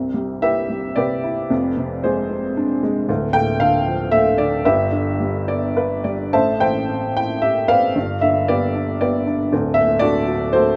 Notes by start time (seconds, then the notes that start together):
Already playing: C2 C3
0.14 G3
0.42 E4 G4 B4 E5
0.70 G3
0.96 C3 G4 B4 D5
1.24 E4
1.50 F1 F2
1.77 C3
2.04 G#3 G#4 C5
2.30 C4
2.57 D4
2.83 G#3
3.09 D1 D2
3.33 A2 G5
3.60 D3 A4 F5
3.86 F3
4.12 A3 E5
4.38 D3 D5
4.65 G1 G2 G4 B4 E5
4.92 D3
5.20 G3
5.48 B3 D5
5.76 D4 B4
6.04 G3 D5
6.33 A1 A2 C5 E5 A5
6.60 E3 C5 E5 G5
6.89 C4
7.16 E4 G5
7.42 G4 E5
7.68 C4 B4 D5 F5
7.96 G1 G2
8.21 D3 E5
8.48 B3 G4 B4 D5
8.75 D4
9.01 B3 G4 B4 D5
9.27 D4
9.52 D1 D2
9.74 A2 E5
9.99 D3 F#4 A4 D5
10.28 F#3
10.53 A3 F#4 A4 C5